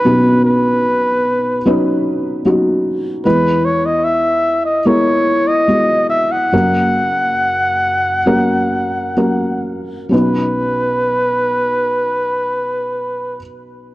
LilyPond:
<<
  \new Staff \with { instrumentName = "Flugelhorn" } { \time 4/4 \key b \major \tempo 4 = 71 b'8 b'2 r4. | b'8 cis''16 dis''16 e''8. dis''16 cis''8. dis''8. e''16 fis''16~ | fis''2.~ fis''8 r8 | b'1 | }
  \new Staff \with { instrumentName = "Felt piano" } { \time 4/4 \key b \major <fis cis' dis' fis'>2 <fis cis' dis' b'>4 <fis cis' dis' fis'>4 | <gis b e' b'>2 <gis b e' ais'>4 <gis b e' fis'>4 | <fis ais cis' ais'>2 <fis ais cis' ais'>4 <fis ais cis' ais'>4 | <fis cis' dis' b'>1 | }
  \new Staff \with { instrumentName = "Felt piano" } { \clef bass \time 4/4 \key b \major <b,, b,>1 | <e, e>1 | <fis,, fis,>1 | b,,1 | }
>>